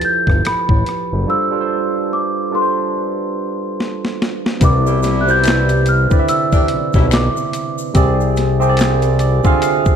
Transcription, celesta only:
0.05 0.47 G6 medium
0.47 1.31 B5 medium
1.30 2.15 E6 loud
2.13 2.55 D6 medium
2.55 4.17 C6 medium
4.65 5.23 D6 medium
5.21 5.28 F#6 medium
5.30 5.90 G6 loud
5.89 6.07 F6 loud
6.29 7.14 E6 loud
7.13 7.74 D6 medium

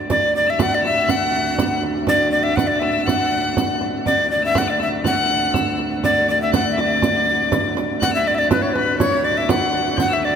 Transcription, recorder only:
0.11 0.33 D5 medium
0.36 0.51 D5 medium
0.50 0.64 E5 medium
0.62 0.76 F#5 loud
0.75 0.86 D5 medium
0.86 1.12 E5 loud
1.11 1.84 F#5 loud
2.09 2.31 D5 loud
2.31 2.45 D5 medium
2.43 2.57 E5 loud
2.56 2.69 F#5 loud
2.67 2.81 D5 medium
2.79 3.04 E5 medium
3.05 3.76 F#5 loud
4.06 4.29 D5 medium
4.31 4.43 D5 medium
4.45 4.60 E5 loud
4.58 4.72 F#5 medium
4.70 4.82 D5 medium
4.82 4.88 E5 medium
5.07 5.76 F#5 loud
6.04 6.27 D5 medium
6.30 6.41 D5 medium
6.42 6.53 E5 medium
6.54 6.71 F#5 medium
6.71 6.81 E5 medium
6.80 7.78 D5 medium
8.03 8.14 F#5 loud
8.15 8.29 E5 medium
8.28 8.36 D5 medium
8.35 8.40 E5 medium
8.39 8.51 D5 loud
8.51 8.64 B4 medium
8.62 8.75 C#5 medium
8.73 8.99 B4 medium
8.99 9.26 C#5 loud
9.25 9.39 D5 medium
9.37 9.51 E5 medium
9.50 9.99 F#5 loud
10.00 10.15 F#5 loud
10.13 10.26 E5 medium
10.25 10.36 D5 medium

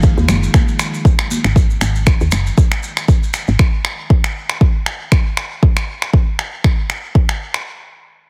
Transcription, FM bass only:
0.00 0.11 G#1 medium
0.17 0.25 D#2 medium
0.29 0.48 F#1 loud
1.45 1.76 G#1 loud
1.81 2.14 G#1 medium
2.21 2.29 D#2 medium
2.32 2.51 F#1 medium
3.48 3.56 G#1 loud

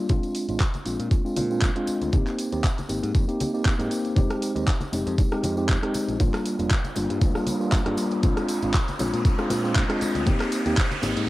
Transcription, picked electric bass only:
0.10 0.19 A#1 medium
0.48 0.57 G#1 medium
0.86 0.96 A#1 medium
1.00 1.08 A#2 loud
1.37 1.69 A#2 medium
1.88 muted picked electric bass stroke soft
2.02 2.10 D2 medium
2.13 2.23 G#1 medium
2.53 2.61 D#2 loud
2.89 2.99 G#1 medium
3.03 3.11 G#2 loud
3.15 3.24 F2 medium
3.79 3.87 G#2 loud
4.17 4.26 F1 medium
4.56 4.64 D#2 loud
4.92 5.02 F1 medium
5.06 5.15 F2 loud
5.43 5.76 F2 medium
5.94 muted picked electric bass stroke soft
6.08 6.16 A#1 medium
6.20 6.30 G1 medium
6.59 6.67 F1 loud
6.96 7.06 G1 medium
7.10 7.18 G2 loud
7.22 7.31 D2 loud
7.87 7.94 G2 loud
8.23 8.33 A#1 medium
8.63 8.71 G#1 loud
9.00 9.09 A#1 medium
9.14 9.22 A#2 loud
9.51 9.83 A#2 loud
10.02 muted picked electric bass stroke soft
10.15 10.23 D2 medium
10.27 10.36 G#1 medium
10.66 10.74 D#2 loud
11.03 11.13 G#1 medium
11.17 11.25 G#2 loud

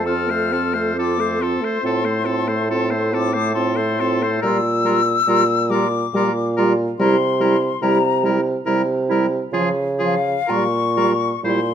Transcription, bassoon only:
0.00 1.54 F2 soft
1.84 4.39 A2 soft
4.43 5.17 A#2 medium
5.27 6.04 A#2 medium
6.14 6.90 A#2 medium
7.00 7.72 C3 medium
7.82 8.57 C3 medium
8.67 9.43 C3 medium
9.53 10.38 C#3 medium
10.50 11.32 A#2 medium
11.44 11.74 A#2 medium

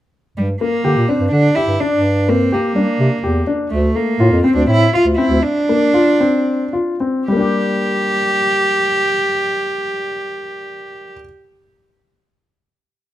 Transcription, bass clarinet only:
0.37 0.56 G2 medium
0.85 0.94 D3 medium
0.97 1.06 A#2 medium
1.20 1.30 G2 medium
1.31 1.51 D3 medium
1.68 1.77 G2 medium
1.93 2.59 G2 medium
2.75 2.85 G3 medium
2.99 3.09 C3 medium
3.23 3.42 E2 medium
3.72 3.91 D2 medium
4.20 4.29 A2 medium
4.32 4.41 F2 medium
4.55 4.65 D2 medium
4.67 4.87 A2 medium
5.05 5.15 D2 medium
5.30 5.40 D2 medium

